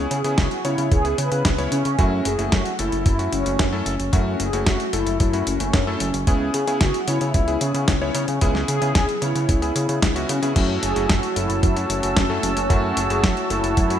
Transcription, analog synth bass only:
0.11 0.23 C#3 loud
0.25 0.36 C#3 medium
0.38 0.49 C#2 loud
0.65 0.76 C#3 medium
0.78 0.90 C#3 medium
0.92 1.14 C#2 medium
1.18 1.30 C#3 medium
1.32 1.43 C#3 loud
1.45 1.68 C#2 medium
1.72 1.83 C#3 medium
1.86 1.97 C#3 loud
1.99 2.21 F#2 loud
2.26 2.37 F#1 loud
2.39 2.50 F#1 medium
2.52 2.64 F#2 medium
2.79 2.91 F#1 medium
2.93 3.04 F#1 medium
3.06 3.29 F#2 medium
3.33 3.44 F#1 loud
3.46 3.57 F#1 medium
3.59 3.82 F#2 medium
3.86 3.98 F#1 loud
4.00 4.11 F#1 medium
4.13 4.36 F#2 loud
4.40 4.51 F#1 medium
4.53 4.65 F#1 medium
4.67 4.78 F#2 medium
4.93 5.05 F#1 medium
5.07 5.18 F#1 medium
5.20 5.43 F#2 medium
5.47 5.58 F#1 loud
5.61 5.72 F#1 medium
5.74 5.97 F#2 loud
6.01 6.12 F#1 loud
6.14 6.25 F#1 medium
6.27 6.50 C#2 loud
6.54 6.66 C#3 loud
6.68 6.79 C#3 medium
6.81 6.92 C#2 medium
7.08 7.19 C#3 medium
7.21 7.33 C#3 medium
7.34 7.57 C#2 medium
7.61 7.73 C#3 medium
7.75 7.86 C#3 medium
7.88 8.11 C#2 loud
8.15 8.26 C#3 loud
8.28 8.40 C#3 medium
8.42 8.64 C#2 loud
8.69 8.80 C#3 loud
8.82 8.93 C#3 medium
8.95 9.07 C#2 medium
9.22 9.33 C#3 medium
9.36 9.47 C#3 medium
9.49 9.72 C#2 medium
9.76 9.87 C#3 medium
9.89 10.00 C#3 medium
10.02 10.25 C#2 medium
10.29 10.41 C#3 loud
10.43 10.54 C#3 medium
10.56 10.79 F#2 loud
10.83 10.94 F#1 loud
10.96 11.08 F#1 medium
11.09 11.21 F#2 medium
11.37 11.48 F#1 medium
11.50 11.61 F#1 medium
11.63 11.86 F#2 medium
11.90 12.01 F#1 loud
12.03 12.15 F#1 medium
12.17 12.39 F#2 loud
12.43 12.55 F#1 loud
12.57 12.68 F#1 medium
12.70 12.93 F#2 loud
12.97 13.08 F#1 medium
13.10 13.22 F#1 medium
13.23 13.35 F#2 medium
13.50 13.62 F#1 medium
13.63 13.75 F#1 medium
13.77 13.99 F#2 medium

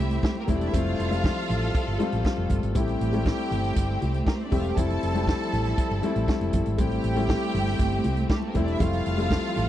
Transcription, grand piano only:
0.00 0.47 G3 medium
0.00 0.48 A3 medium
0.00 0.48 C4 medium
0.00 0.48 E4 medium
0.47 0.65 G3 medium
0.47 0.66 A3 medium
0.47 0.66 C4 medium
0.47 0.66 E4 medium
0.72 0.99 G3 medium
0.72 0.99 A3 medium
0.72 1.00 C4 medium
0.72 1.00 E4 medium
1.10 1.72 G3 medium
1.10 1.73 A3 medium
1.10 1.73 C4 medium
1.10 1.73 F4 medium
1.99 2.52 G3 medium
1.99 2.52 A3 medium
1.99 2.53 C4 medium
1.99 2.53 F4 loud
2.74 3.01 G3 medium
2.74 3.01 A3 medium
2.74 3.02 C4 medium
2.74 3.02 E4 medium
3.13 3.83 G3 medium
3.13 3.83 A3 medium
3.13 3.84 C4 medium
3.13 3.84 E4 medium
4.51 4.69 G3 medium
4.51 4.69 A3 medium
4.51 4.69 C4 medium
4.51 4.70 G4 medium
4.76 5.03 G3 medium
4.76 5.03 A3 medium
4.76 5.03 C4 medium
4.76 5.03 E4 medium
5.14 5.76 G3 medium
5.14 5.76 A3 medium
5.14 5.76 C4 medium
5.14 5.77 E4 medium
6.02 6.55 G3 medium
6.02 6.56 A3 medium
6.02 6.56 C4 medium
6.02 6.56 E4 medium
6.78 7.05 G3 medium
6.78 7.05 A3 medium
6.78 7.05 C4 medium
6.78 7.05 E4 medium
7.16 7.86 G3 medium
7.16 7.87 A3 medium
7.16 7.87 C4 medium
7.16 7.87 E4 medium
8.54 8.72 G3 medium
8.54 8.73 A3 medium
8.54 8.73 C4 medium
8.54 8.73 E4 loud
8.79 9.06 G3 medium
8.79 9.07 A3 medium
8.79 9.07 C4 medium
8.79 9.07 E4 medium
9.18 9.69 G3 medium
9.18 9.69 A3 medium
9.18 9.69 C4 medium
9.18 9.69 F4 medium

